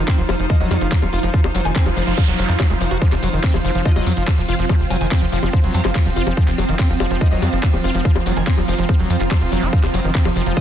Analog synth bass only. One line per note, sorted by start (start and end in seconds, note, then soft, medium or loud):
0.18 0.26 F1 medium
0.29 0.36 F1 loud
0.39 0.47 F1 medium
0.60 0.68 F1 medium
0.71 0.78 F2 loud
0.81 0.89 F#1 medium
1.02 1.10 D#1 medium
1.13 1.20 F1 loud
1.23 1.31 F1 loud
1.44 1.52 F1 medium
1.55 1.62 F1 loud
1.65 1.73 F1 medium
1.86 1.94 F1 medium
1.97 2.04 F1 loud
2.07 2.15 F1 medium
2.28 2.35 F1 medium
2.39 2.46 F1 loud
2.49 2.56 F2 medium
2.70 2.77 F1 medium
2.81 2.88 F1 loud
2.91 2.98 F1 loud
3.12 3.19 F1 medium
3.23 3.30 F1 loud
3.33 3.40 F1 medium
3.54 3.61 F1 medium
3.65 3.72 F1 loud
3.75 3.82 F1 medium
3.96 4.03 F1 medium
4.06 4.14 F2 loud
4.17 4.24 F#1 medium
4.38 4.45 D#1 medium
4.48 4.56 F1 loud
4.59 4.66 F1 loud
4.80 4.87 F1 medium
4.90 4.98 F1 loud
5.01 5.08 F1 medium
5.22 5.29 F1 medium
5.32 5.40 F1 loud
5.43 5.50 F1 loud
5.64 5.71 F1 medium
5.74 5.82 F2 loud
5.85 5.92 F#1 medium
6.06 6.13 D#1 medium
6.16 6.24 F1 loud
6.27 6.34 F1 loud
6.48 6.55 F1 medium
6.58 6.66 F1 loud
6.69 6.76 F1 medium
6.90 6.97 F1 medium
7.00 7.08 F1 loud
7.11 7.18 F1 medium
7.32 7.39 F1 medium
7.42 7.49 F2 loud
7.53 7.60 F#1 medium
7.74 7.81 D#1 medium
7.84 7.91 F1 loud
7.95 8.02 F1 medium
8.16 8.23 F1 medium
8.26 8.33 F1 loud
8.37 8.44 F1 medium
8.57 8.65 F1 medium
8.68 8.75 F1 loud
8.78 8.86 F1 medium
8.99 9.07 F1 medium
9.10 9.17 F2 loud
9.20 9.28 F#1 medium
9.41 9.49 D#1 medium
9.52 9.59 F1 loud
9.62 9.70 F1 medium
9.83 9.91 F1 medium
9.94 10.01 F1 loud
10.04 10.12 F1 medium
10.25 10.33 F1 medium
10.36 10.43 F1 loud
10.46 10.54 F1 medium